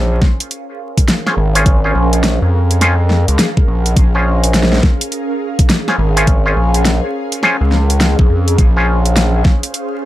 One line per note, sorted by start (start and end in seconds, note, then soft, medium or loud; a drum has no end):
0.00 0.20 A#1 loud
0.00 1.22 C#4 medium
0.00 10.05 C#4 medium
0.00 1.22 F4 medium
0.00 1.22 G#4 medium
0.00 10.05 G#4 medium
0.00 7.99 A#4 medium
0.00 1.22 C5 loud
0.00 10.05 F5 medium
0.22 kick loud
0.22 snare medium
0.40 closed hi-hat medium
0.51 closed hi-hat medium
0.98 kick loud
0.98 closed hi-hat medium
1.08 snare loud
1.08 closed hi-hat medium
1.26 1.34 C#4 medium
1.26 1.34 F4 medium
1.26 1.34 G#4 medium
1.26 1.34 C5 medium
1.26 snare medium
1.37 1.93 G#1 medium
1.55 1.80 C#4 medium
1.55 1.80 F4 medium
1.55 1.80 G#4 medium
1.55 1.80 C5 loud
1.55 closed hi-hat medium
1.66 kick loud
1.66 closed hi-hat medium
1.84 2.79 C#4 medium
1.84 2.79 F4 medium
1.84 2.79 G#4 medium
1.84 2.79 C5 loud
1.95 2.39 A#1 medium
2.13 closed hi-hat medium
2.24 snare loud
2.24 closed hi-hat medium
2.42 3.26 F2 loud
2.71 closed hi-hat medium
2.81 2.95 C#4 medium
2.81 2.95 F4 medium
2.81 2.95 G#4 medium
2.81 2.95 C5 loud
2.81 snare medium
2.81 closed hi-hat medium
3.10 snare medium
3.28 3.37 C#2 medium
3.28 closed hi-hat medium
3.39 snare loud
3.39 closed hi-hat medium
3.57 kick loud
3.68 3.95 A#1 loud
3.86 closed hi-hat medium
3.96 4.82 A#1 loud
3.96 kick loud
3.96 closed hi-hat medium
4.15 5.84 C#4 medium
4.15 5.84 F4 medium
4.15 5.84 G#4 medium
4.15 5.84 C5 loud
4.44 closed hi-hat medium
4.54 snare loud
4.54 closed hi-hat medium
4.63 snare medium
4.72 snare medium
4.78 snare medium
4.83 kick loud
4.83 snare medium
5.01 closed hi-hat medium
5.12 closed hi-hat medium
5.59 kick loud
5.59 closed hi-hat medium
5.70 snare loud
5.70 closed hi-hat medium
5.88 5.96 C#4 medium
5.88 5.96 F4 medium
5.88 5.96 G#4 medium
5.88 5.96 C5 medium
5.88 snare soft
5.98 6.55 G#1 loud
6.16 6.41 C#4 medium
6.16 6.41 F4 medium
6.16 6.41 G#4 medium
6.16 6.41 C5 loud
6.16 closed hi-hat medium
6.27 kick loud
6.27 closed hi-hat soft
6.46 7.40 C#4 medium
6.46 7.40 F4 medium
6.46 7.40 G#4 medium
6.46 7.40 C5 loud
6.56 7.00 A#1 loud
6.74 closed hi-hat medium
6.85 snare loud
6.85 closed hi-hat soft
7.32 closed hi-hat medium
7.43 7.57 C#4 loud
7.43 7.57 F4 medium
7.43 7.57 G#4 medium
7.43 7.57 C5 loud
7.43 snare soft
7.61 8.16 C#2 loud
7.72 snare medium
7.83 10.05 C5 medium
7.90 closed hi-hat medium
8.01 snare loud
8.01 closed hi-hat medium
8.19 8.28 A#1 medium
8.19 kick loud
8.30 8.57 F2 medium
8.48 closed hi-hat medium
8.58 9.43 A#1 loud
8.58 kick loud
8.58 closed hi-hat soft
8.77 10.05 C#4 medium
8.77 10.05 F4 medium
8.77 10.05 G#4 medium
8.77 10.05 C5 loud
9.06 closed hi-hat medium
9.16 snare loud
9.16 closed hi-hat soft
9.45 kick loud
9.45 snare medium
9.63 closed hi-hat medium
9.74 closed hi-hat soft